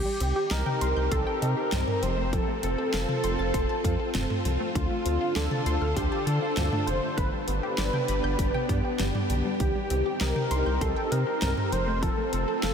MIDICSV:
0, 0, Header, 1, 6, 480
1, 0, Start_track
1, 0, Tempo, 606061
1, 1845, Time_signature, 4, 2, 24, 8
1, 10089, End_track
2, 0, Start_track
2, 0, Title_t, "Analog synth lead"
2, 0, Program_c, 0, 81
2, 0, Note_on_c, 0, 67, 84
2, 404, Note_on_c, 0, 70, 99
2, 415, Note_off_c, 0, 67, 0
2, 880, Note_off_c, 0, 70, 0
2, 885, Note_on_c, 0, 69, 94
2, 1108, Note_off_c, 0, 69, 0
2, 1127, Note_on_c, 0, 70, 109
2, 1606, Note_on_c, 0, 72, 104
2, 1618, Note_off_c, 0, 70, 0
2, 1847, Note_on_c, 0, 69, 99
2, 1859, Note_off_c, 0, 72, 0
2, 2084, Note_off_c, 0, 69, 0
2, 2089, Note_on_c, 0, 69, 107
2, 3495, Note_off_c, 0, 69, 0
2, 3765, Note_on_c, 0, 65, 87
2, 4242, Note_on_c, 0, 69, 92
2, 4254, Note_off_c, 0, 65, 0
2, 4720, Note_on_c, 0, 67, 93
2, 4731, Note_off_c, 0, 69, 0
2, 4959, Note_on_c, 0, 69, 108
2, 4971, Note_off_c, 0, 67, 0
2, 5438, Note_on_c, 0, 72, 105
2, 5450, Note_off_c, 0, 69, 0
2, 5674, Note_off_c, 0, 72, 0
2, 5678, Note_on_c, 0, 71, 96
2, 5788, Note_off_c, 0, 71, 0
2, 5918, Note_on_c, 0, 71, 109
2, 7329, Note_off_c, 0, 71, 0
2, 7606, Note_on_c, 0, 67, 89
2, 8054, Note_off_c, 0, 67, 0
2, 8087, Note_on_c, 0, 70, 97
2, 8566, Note_on_c, 0, 69, 93
2, 8577, Note_off_c, 0, 70, 0
2, 8800, Note_off_c, 0, 69, 0
2, 8805, Note_on_c, 0, 70, 108
2, 9284, Note_on_c, 0, 72, 104
2, 9295, Note_off_c, 0, 70, 0
2, 9522, Note_on_c, 0, 69, 99
2, 9534, Note_off_c, 0, 72, 0
2, 9756, Note_off_c, 0, 69, 0
2, 9761, Note_on_c, 0, 69, 106
2, 10089, Note_off_c, 0, 69, 0
2, 10089, End_track
3, 0, Start_track
3, 0, Title_t, "Synth pluck"
3, 0, Program_c, 1, 84
3, 43, Note_on_c, 1, 55, 74
3, 150, Note_off_c, 1, 55, 0
3, 165, Note_on_c, 1, 60, 79
3, 271, Note_off_c, 1, 60, 0
3, 285, Note_on_c, 1, 67, 95
3, 391, Note_off_c, 1, 67, 0
3, 404, Note_on_c, 1, 75, 79
3, 511, Note_off_c, 1, 75, 0
3, 524, Note_on_c, 1, 79, 83
3, 631, Note_off_c, 1, 79, 0
3, 644, Note_on_c, 1, 84, 100
3, 751, Note_off_c, 1, 84, 0
3, 764, Note_on_c, 1, 91, 89
3, 871, Note_off_c, 1, 91, 0
3, 884, Note_on_c, 1, 84, 88
3, 991, Note_off_c, 1, 84, 0
3, 1004, Note_on_c, 1, 79, 98
3, 1111, Note_off_c, 1, 79, 0
3, 1123, Note_on_c, 1, 75, 79
3, 1230, Note_off_c, 1, 75, 0
3, 1243, Note_on_c, 1, 67, 84
3, 1350, Note_off_c, 1, 67, 0
3, 1363, Note_on_c, 1, 60, 91
3, 1470, Note_off_c, 1, 60, 0
3, 1482, Note_on_c, 1, 55, 73
3, 1590, Note_off_c, 1, 55, 0
3, 1603, Note_on_c, 1, 53, 69
3, 1710, Note_off_c, 1, 53, 0
3, 1724, Note_on_c, 1, 57, 90
3, 1831, Note_off_c, 1, 57, 0
3, 1844, Note_on_c, 1, 53, 87
3, 1951, Note_off_c, 1, 53, 0
3, 1963, Note_on_c, 1, 57, 75
3, 2070, Note_off_c, 1, 57, 0
3, 2084, Note_on_c, 1, 60, 82
3, 2191, Note_off_c, 1, 60, 0
3, 2204, Note_on_c, 1, 69, 93
3, 2311, Note_off_c, 1, 69, 0
3, 2324, Note_on_c, 1, 77, 82
3, 2431, Note_off_c, 1, 77, 0
3, 2444, Note_on_c, 1, 81, 82
3, 2551, Note_off_c, 1, 81, 0
3, 2565, Note_on_c, 1, 84, 99
3, 2671, Note_off_c, 1, 84, 0
3, 2685, Note_on_c, 1, 93, 91
3, 2791, Note_off_c, 1, 93, 0
3, 2806, Note_on_c, 1, 84, 86
3, 2912, Note_off_c, 1, 84, 0
3, 2924, Note_on_c, 1, 81, 96
3, 3031, Note_off_c, 1, 81, 0
3, 3045, Note_on_c, 1, 77, 81
3, 3151, Note_off_c, 1, 77, 0
3, 3165, Note_on_c, 1, 69, 83
3, 3271, Note_off_c, 1, 69, 0
3, 3285, Note_on_c, 1, 60, 93
3, 3391, Note_off_c, 1, 60, 0
3, 3406, Note_on_c, 1, 57, 75
3, 3512, Note_off_c, 1, 57, 0
3, 3525, Note_on_c, 1, 53, 72
3, 3631, Note_off_c, 1, 53, 0
3, 3645, Note_on_c, 1, 57, 91
3, 3752, Note_off_c, 1, 57, 0
3, 3765, Note_on_c, 1, 50, 86
3, 3871, Note_off_c, 1, 50, 0
3, 3885, Note_on_c, 1, 57, 76
3, 3991, Note_off_c, 1, 57, 0
3, 4005, Note_on_c, 1, 60, 81
3, 4111, Note_off_c, 1, 60, 0
3, 4124, Note_on_c, 1, 65, 92
3, 4231, Note_off_c, 1, 65, 0
3, 4245, Note_on_c, 1, 74, 82
3, 4352, Note_off_c, 1, 74, 0
3, 4365, Note_on_c, 1, 81, 85
3, 4471, Note_off_c, 1, 81, 0
3, 4486, Note_on_c, 1, 84, 99
3, 4592, Note_off_c, 1, 84, 0
3, 4605, Note_on_c, 1, 89, 88
3, 4712, Note_off_c, 1, 89, 0
3, 4726, Note_on_c, 1, 84, 86
3, 4832, Note_off_c, 1, 84, 0
3, 4846, Note_on_c, 1, 81, 100
3, 4952, Note_off_c, 1, 81, 0
3, 4966, Note_on_c, 1, 74, 78
3, 5072, Note_off_c, 1, 74, 0
3, 5086, Note_on_c, 1, 65, 83
3, 5192, Note_off_c, 1, 65, 0
3, 5205, Note_on_c, 1, 60, 93
3, 5311, Note_off_c, 1, 60, 0
3, 5326, Note_on_c, 1, 57, 73
3, 5432, Note_off_c, 1, 57, 0
3, 5446, Note_on_c, 1, 50, 69
3, 5552, Note_off_c, 1, 50, 0
3, 5565, Note_on_c, 1, 57, 88
3, 5671, Note_off_c, 1, 57, 0
3, 5684, Note_on_c, 1, 50, 86
3, 5791, Note_off_c, 1, 50, 0
3, 5805, Note_on_c, 1, 55, 74
3, 5911, Note_off_c, 1, 55, 0
3, 5926, Note_on_c, 1, 59, 81
3, 6032, Note_off_c, 1, 59, 0
3, 6045, Note_on_c, 1, 67, 93
3, 6151, Note_off_c, 1, 67, 0
3, 6165, Note_on_c, 1, 74, 84
3, 6271, Note_off_c, 1, 74, 0
3, 6286, Note_on_c, 1, 79, 81
3, 6392, Note_off_c, 1, 79, 0
3, 6406, Note_on_c, 1, 83, 100
3, 6512, Note_off_c, 1, 83, 0
3, 6525, Note_on_c, 1, 91, 86
3, 6631, Note_off_c, 1, 91, 0
3, 6646, Note_on_c, 1, 83, 84
3, 6752, Note_off_c, 1, 83, 0
3, 6767, Note_on_c, 1, 79, 99
3, 6872, Note_off_c, 1, 79, 0
3, 6886, Note_on_c, 1, 74, 83
3, 6992, Note_off_c, 1, 74, 0
3, 7006, Note_on_c, 1, 67, 82
3, 7112, Note_off_c, 1, 67, 0
3, 7125, Note_on_c, 1, 59, 92
3, 7231, Note_off_c, 1, 59, 0
3, 7245, Note_on_c, 1, 55, 73
3, 7352, Note_off_c, 1, 55, 0
3, 7367, Note_on_c, 1, 50, 71
3, 7472, Note_off_c, 1, 50, 0
3, 7486, Note_on_c, 1, 55, 91
3, 7592, Note_off_c, 1, 55, 0
3, 7605, Note_on_c, 1, 51, 85
3, 7711, Note_off_c, 1, 51, 0
3, 7725, Note_on_c, 1, 55, 74
3, 7831, Note_off_c, 1, 55, 0
3, 7846, Note_on_c, 1, 60, 81
3, 7952, Note_off_c, 1, 60, 0
3, 7966, Note_on_c, 1, 67, 92
3, 8072, Note_off_c, 1, 67, 0
3, 8085, Note_on_c, 1, 75, 80
3, 8191, Note_off_c, 1, 75, 0
3, 8205, Note_on_c, 1, 79, 83
3, 8311, Note_off_c, 1, 79, 0
3, 8325, Note_on_c, 1, 84, 99
3, 8431, Note_off_c, 1, 84, 0
3, 8444, Note_on_c, 1, 91, 90
3, 8551, Note_off_c, 1, 91, 0
3, 8564, Note_on_c, 1, 84, 89
3, 8671, Note_off_c, 1, 84, 0
3, 8683, Note_on_c, 1, 79, 99
3, 8790, Note_off_c, 1, 79, 0
3, 8803, Note_on_c, 1, 75, 78
3, 8910, Note_off_c, 1, 75, 0
3, 8923, Note_on_c, 1, 67, 81
3, 9030, Note_off_c, 1, 67, 0
3, 9043, Note_on_c, 1, 60, 92
3, 9150, Note_off_c, 1, 60, 0
3, 9164, Note_on_c, 1, 55, 73
3, 9271, Note_off_c, 1, 55, 0
3, 9285, Note_on_c, 1, 53, 68
3, 9391, Note_off_c, 1, 53, 0
3, 9405, Note_on_c, 1, 57, 95
3, 9511, Note_off_c, 1, 57, 0
3, 9525, Note_on_c, 1, 53, 87
3, 9631, Note_off_c, 1, 53, 0
3, 9645, Note_on_c, 1, 57, 72
3, 9751, Note_off_c, 1, 57, 0
3, 9764, Note_on_c, 1, 60, 83
3, 9871, Note_off_c, 1, 60, 0
3, 9883, Note_on_c, 1, 69, 93
3, 9990, Note_off_c, 1, 69, 0
3, 10004, Note_on_c, 1, 77, 80
3, 10089, Note_off_c, 1, 77, 0
3, 10089, End_track
4, 0, Start_track
4, 0, Title_t, "String machine"
4, 0, Program_c, 2, 50
4, 0, Note_on_c, 2, 60, 80
4, 0, Note_on_c, 2, 63, 73
4, 0, Note_on_c, 2, 67, 85
4, 1587, Note_off_c, 2, 63, 0
4, 1587, Note_off_c, 2, 67, 0
4, 1603, Note_on_c, 2, 69, 87
4, 1604, Note_on_c, 2, 65, 71
4, 3731, Note_off_c, 2, 60, 0
4, 3742, Note_off_c, 2, 69, 0
4, 3763, Note_on_c, 2, 50, 77
4, 3763, Note_on_c, 2, 62, 76
4, 3763, Note_on_c, 2, 69, 74
4, 3764, Note_on_c, 2, 72, 90
4, 5652, Note_off_c, 2, 65, 0
4, 5664, Note_off_c, 2, 62, 0
4, 5664, Note_off_c, 2, 69, 0
4, 5665, Note_off_c, 2, 50, 0
4, 5665, Note_off_c, 2, 72, 0
4, 5683, Note_on_c, 2, 59, 82
4, 5683, Note_on_c, 2, 67, 90
4, 5684, Note_on_c, 2, 62, 74
4, 7585, Note_off_c, 2, 59, 0
4, 7585, Note_off_c, 2, 62, 0
4, 7604, Note_on_c, 2, 63, 74
4, 7605, Note_on_c, 2, 60, 80
4, 9252, Note_off_c, 2, 67, 0
4, 9268, Note_off_c, 2, 63, 0
4, 9283, Note_on_c, 2, 65, 71
4, 9283, Note_on_c, 2, 69, 86
4, 10089, Note_off_c, 2, 60, 0
4, 10089, Note_off_c, 2, 65, 0
4, 10089, Note_off_c, 2, 69, 0
4, 10089, End_track
5, 0, Start_track
5, 0, Title_t, "Analog synth bass"
5, 0, Program_c, 3, 38
5, 162, Note_on_c, 3, 36, 100
5, 262, Note_off_c, 3, 36, 0
5, 403, Note_on_c, 3, 36, 98
5, 502, Note_off_c, 3, 36, 0
5, 645, Note_on_c, 3, 36, 91
5, 743, Note_off_c, 3, 36, 0
5, 764, Note_on_c, 3, 36, 99
5, 863, Note_off_c, 3, 36, 0
5, 884, Note_on_c, 3, 36, 114
5, 983, Note_off_c, 3, 36, 0
5, 1126, Note_on_c, 3, 48, 101
5, 1224, Note_off_c, 3, 48, 0
5, 1365, Note_on_c, 3, 36, 100
5, 1464, Note_off_c, 3, 36, 0
5, 1605, Note_on_c, 3, 29, 100
5, 1901, Note_off_c, 3, 29, 0
5, 2086, Note_on_c, 3, 29, 105
5, 2184, Note_off_c, 3, 29, 0
5, 2325, Note_on_c, 3, 29, 98
5, 2423, Note_off_c, 3, 29, 0
5, 2565, Note_on_c, 3, 29, 102
5, 2664, Note_off_c, 3, 29, 0
5, 2686, Note_on_c, 3, 29, 94
5, 2784, Note_off_c, 3, 29, 0
5, 2804, Note_on_c, 3, 29, 98
5, 2903, Note_off_c, 3, 29, 0
5, 3045, Note_on_c, 3, 41, 96
5, 3144, Note_off_c, 3, 41, 0
5, 3285, Note_on_c, 3, 29, 110
5, 3383, Note_off_c, 3, 29, 0
5, 3526, Note_on_c, 3, 36, 92
5, 3624, Note_off_c, 3, 36, 0
5, 3765, Note_on_c, 3, 38, 104
5, 3863, Note_off_c, 3, 38, 0
5, 4005, Note_on_c, 3, 38, 100
5, 4103, Note_off_c, 3, 38, 0
5, 4244, Note_on_c, 3, 38, 100
5, 4343, Note_off_c, 3, 38, 0
5, 4482, Note_on_c, 3, 38, 96
5, 4582, Note_off_c, 3, 38, 0
5, 4604, Note_on_c, 3, 38, 103
5, 4703, Note_off_c, 3, 38, 0
5, 4725, Note_on_c, 3, 38, 103
5, 4823, Note_off_c, 3, 38, 0
5, 4963, Note_on_c, 3, 50, 95
5, 5062, Note_off_c, 3, 50, 0
5, 5204, Note_on_c, 3, 38, 103
5, 5303, Note_off_c, 3, 38, 0
5, 5445, Note_on_c, 3, 29, 93
5, 5543, Note_off_c, 3, 29, 0
5, 5684, Note_on_c, 3, 31, 112
5, 5783, Note_off_c, 3, 31, 0
5, 5923, Note_on_c, 3, 31, 92
5, 6022, Note_off_c, 3, 31, 0
5, 6162, Note_on_c, 3, 31, 99
5, 6262, Note_off_c, 3, 31, 0
5, 6404, Note_on_c, 3, 31, 93
5, 6503, Note_off_c, 3, 31, 0
5, 6523, Note_on_c, 3, 31, 92
5, 6622, Note_off_c, 3, 31, 0
5, 6643, Note_on_c, 3, 31, 95
5, 6743, Note_off_c, 3, 31, 0
5, 6885, Note_on_c, 3, 43, 94
5, 6984, Note_off_c, 3, 43, 0
5, 7124, Note_on_c, 3, 31, 100
5, 7223, Note_off_c, 3, 31, 0
5, 7364, Note_on_c, 3, 35, 95
5, 7463, Note_off_c, 3, 35, 0
5, 7605, Note_on_c, 3, 36, 102
5, 7703, Note_off_c, 3, 36, 0
5, 7844, Note_on_c, 3, 36, 98
5, 7943, Note_off_c, 3, 36, 0
5, 8086, Note_on_c, 3, 36, 100
5, 8184, Note_off_c, 3, 36, 0
5, 8324, Note_on_c, 3, 36, 96
5, 8423, Note_off_c, 3, 36, 0
5, 8445, Note_on_c, 3, 36, 98
5, 8544, Note_off_c, 3, 36, 0
5, 8564, Note_on_c, 3, 36, 112
5, 8663, Note_off_c, 3, 36, 0
5, 8806, Note_on_c, 3, 48, 103
5, 8904, Note_off_c, 3, 48, 0
5, 9046, Note_on_c, 3, 36, 100
5, 9144, Note_off_c, 3, 36, 0
5, 9285, Note_on_c, 3, 29, 97
5, 9581, Note_off_c, 3, 29, 0
5, 9765, Note_on_c, 3, 29, 108
5, 9864, Note_off_c, 3, 29, 0
5, 10004, Note_on_c, 3, 29, 94
5, 10089, Note_off_c, 3, 29, 0
5, 10089, End_track
6, 0, Start_track
6, 0, Title_t, "Drums"
6, 162, Note_on_c, 9, 42, 74
6, 241, Note_off_c, 9, 42, 0
6, 403, Note_on_c, 9, 38, 102
6, 403, Note_on_c, 9, 42, 69
6, 482, Note_off_c, 9, 38, 0
6, 482, Note_off_c, 9, 42, 0
6, 524, Note_on_c, 9, 47, 90
6, 603, Note_off_c, 9, 47, 0
6, 645, Note_on_c, 9, 42, 68
6, 724, Note_off_c, 9, 42, 0
6, 884, Note_on_c, 9, 36, 75
6, 884, Note_on_c, 9, 42, 84
6, 963, Note_off_c, 9, 36, 0
6, 963, Note_off_c, 9, 42, 0
6, 1127, Note_on_c, 9, 42, 68
6, 1206, Note_off_c, 9, 42, 0
6, 1364, Note_on_c, 9, 38, 100
6, 1365, Note_on_c, 9, 42, 73
6, 1365, Note_on_c, 9, 45, 85
6, 1443, Note_off_c, 9, 38, 0
6, 1444, Note_off_c, 9, 42, 0
6, 1444, Note_off_c, 9, 45, 0
6, 1486, Note_on_c, 9, 45, 93
6, 1565, Note_off_c, 9, 45, 0
6, 1605, Note_on_c, 9, 42, 62
6, 1685, Note_off_c, 9, 42, 0
6, 1845, Note_on_c, 9, 36, 108
6, 1845, Note_on_c, 9, 42, 75
6, 1924, Note_off_c, 9, 36, 0
6, 1924, Note_off_c, 9, 42, 0
6, 2084, Note_on_c, 9, 42, 77
6, 2163, Note_off_c, 9, 42, 0
6, 2326, Note_on_c, 9, 38, 106
6, 2326, Note_on_c, 9, 42, 73
6, 2405, Note_off_c, 9, 38, 0
6, 2405, Note_off_c, 9, 42, 0
6, 2444, Note_on_c, 9, 47, 87
6, 2523, Note_off_c, 9, 47, 0
6, 2564, Note_on_c, 9, 42, 68
6, 2643, Note_off_c, 9, 42, 0
6, 2804, Note_on_c, 9, 36, 76
6, 2805, Note_on_c, 9, 42, 84
6, 2884, Note_off_c, 9, 36, 0
6, 2885, Note_off_c, 9, 42, 0
6, 3045, Note_on_c, 9, 36, 87
6, 3047, Note_on_c, 9, 42, 70
6, 3124, Note_off_c, 9, 36, 0
6, 3127, Note_off_c, 9, 42, 0
6, 3285, Note_on_c, 9, 38, 104
6, 3285, Note_on_c, 9, 42, 74
6, 3285, Note_on_c, 9, 45, 86
6, 3364, Note_off_c, 9, 38, 0
6, 3364, Note_off_c, 9, 42, 0
6, 3364, Note_off_c, 9, 45, 0
6, 3408, Note_on_c, 9, 45, 90
6, 3488, Note_off_c, 9, 45, 0
6, 3527, Note_on_c, 9, 42, 62
6, 3606, Note_off_c, 9, 42, 0
6, 3765, Note_on_c, 9, 36, 106
6, 3767, Note_on_c, 9, 42, 78
6, 3845, Note_off_c, 9, 36, 0
6, 3846, Note_off_c, 9, 42, 0
6, 4005, Note_on_c, 9, 42, 74
6, 4084, Note_off_c, 9, 42, 0
6, 4246, Note_on_c, 9, 38, 109
6, 4246, Note_on_c, 9, 42, 68
6, 4325, Note_off_c, 9, 38, 0
6, 4325, Note_off_c, 9, 42, 0
6, 4364, Note_on_c, 9, 47, 91
6, 4444, Note_off_c, 9, 47, 0
6, 4484, Note_on_c, 9, 42, 67
6, 4564, Note_off_c, 9, 42, 0
6, 4724, Note_on_c, 9, 36, 76
6, 4725, Note_on_c, 9, 42, 82
6, 4803, Note_off_c, 9, 36, 0
6, 4804, Note_off_c, 9, 42, 0
6, 4966, Note_on_c, 9, 42, 70
6, 5045, Note_off_c, 9, 42, 0
6, 5204, Note_on_c, 9, 38, 102
6, 5204, Note_on_c, 9, 42, 75
6, 5204, Note_on_c, 9, 45, 84
6, 5283, Note_off_c, 9, 38, 0
6, 5284, Note_off_c, 9, 42, 0
6, 5284, Note_off_c, 9, 45, 0
6, 5325, Note_on_c, 9, 45, 92
6, 5405, Note_off_c, 9, 45, 0
6, 5445, Note_on_c, 9, 42, 61
6, 5524, Note_off_c, 9, 42, 0
6, 5684, Note_on_c, 9, 36, 106
6, 5684, Note_on_c, 9, 42, 74
6, 5763, Note_off_c, 9, 36, 0
6, 5763, Note_off_c, 9, 42, 0
6, 5922, Note_on_c, 9, 42, 74
6, 6001, Note_off_c, 9, 42, 0
6, 6163, Note_on_c, 9, 38, 101
6, 6163, Note_on_c, 9, 42, 69
6, 6242, Note_off_c, 9, 38, 0
6, 6242, Note_off_c, 9, 42, 0
6, 6283, Note_on_c, 9, 47, 89
6, 6362, Note_off_c, 9, 47, 0
6, 6403, Note_on_c, 9, 42, 68
6, 6482, Note_off_c, 9, 42, 0
6, 6644, Note_on_c, 9, 36, 75
6, 6644, Note_on_c, 9, 42, 83
6, 6723, Note_off_c, 9, 36, 0
6, 6723, Note_off_c, 9, 42, 0
6, 6766, Note_on_c, 9, 47, 59
6, 6846, Note_off_c, 9, 47, 0
6, 6884, Note_on_c, 9, 36, 85
6, 6886, Note_on_c, 9, 42, 70
6, 6963, Note_off_c, 9, 36, 0
6, 6965, Note_off_c, 9, 42, 0
6, 7124, Note_on_c, 9, 38, 99
6, 7125, Note_on_c, 9, 42, 72
6, 7125, Note_on_c, 9, 45, 84
6, 7203, Note_off_c, 9, 38, 0
6, 7204, Note_off_c, 9, 42, 0
6, 7204, Note_off_c, 9, 45, 0
6, 7246, Note_on_c, 9, 45, 92
6, 7325, Note_off_c, 9, 45, 0
6, 7364, Note_on_c, 9, 42, 62
6, 7444, Note_off_c, 9, 42, 0
6, 7604, Note_on_c, 9, 36, 107
6, 7604, Note_on_c, 9, 42, 77
6, 7683, Note_off_c, 9, 42, 0
6, 7684, Note_off_c, 9, 36, 0
6, 7843, Note_on_c, 9, 42, 76
6, 7923, Note_off_c, 9, 42, 0
6, 8084, Note_on_c, 9, 38, 104
6, 8085, Note_on_c, 9, 42, 73
6, 8164, Note_off_c, 9, 38, 0
6, 8164, Note_off_c, 9, 42, 0
6, 8204, Note_on_c, 9, 47, 90
6, 8283, Note_off_c, 9, 47, 0
6, 8324, Note_on_c, 9, 42, 66
6, 8403, Note_off_c, 9, 42, 0
6, 8564, Note_on_c, 9, 36, 76
6, 8565, Note_on_c, 9, 42, 84
6, 8643, Note_off_c, 9, 36, 0
6, 8644, Note_off_c, 9, 42, 0
6, 8806, Note_on_c, 9, 42, 70
6, 8886, Note_off_c, 9, 42, 0
6, 9044, Note_on_c, 9, 38, 103
6, 9045, Note_on_c, 9, 42, 75
6, 9045, Note_on_c, 9, 45, 87
6, 9124, Note_off_c, 9, 38, 0
6, 9124, Note_off_c, 9, 42, 0
6, 9124, Note_off_c, 9, 45, 0
6, 9167, Note_on_c, 9, 45, 90
6, 9246, Note_off_c, 9, 45, 0
6, 9286, Note_on_c, 9, 42, 60
6, 9365, Note_off_c, 9, 42, 0
6, 9525, Note_on_c, 9, 36, 109
6, 9525, Note_on_c, 9, 42, 76
6, 9604, Note_off_c, 9, 36, 0
6, 9604, Note_off_c, 9, 42, 0
6, 9764, Note_on_c, 9, 42, 75
6, 9843, Note_off_c, 9, 42, 0
6, 10005, Note_on_c, 9, 38, 105
6, 10005, Note_on_c, 9, 42, 71
6, 10084, Note_off_c, 9, 38, 0
6, 10084, Note_off_c, 9, 42, 0
6, 10089, End_track
0, 0, End_of_file